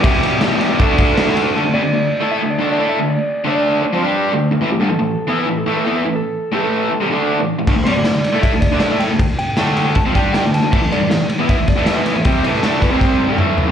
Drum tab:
CC |----------------|----------------|----------------|----------------|
RD |x-x-x-x-x-x-x-x-|----------------|----------------|----------------|
SD |----o-------oo--|----------------|----------------|----------------|
T2 |----------------|----------------|----------------|----------------|
FT |----------------|----------------|----------------|----------------|
BD |o-------o-o-----|----------------|----------------|----------------|

CC |----------------|x---------------|----------------|x---------------|
RD |----------------|--x-x-x-x-x-x-x-|x-x-x-x-x-x-x-x-|--x-x-x-x-x-x-x-|
SD |----------------|----o-------o-o-|----o-------o-o-|----o-------o-o-|
T2 |----------------|----------------|----------------|----------------|
FT |----------------|----------------|----------------|----------------|
BD |----------------|o-------o-o-----|o-------o-o-----|o-------o-o-----|

CC |----------------|
RD |x-x-x-x---------|
SD |---oo---o-------|
T2 |------------o---|
FT |--------------o-|
BD |o-----o-o-------|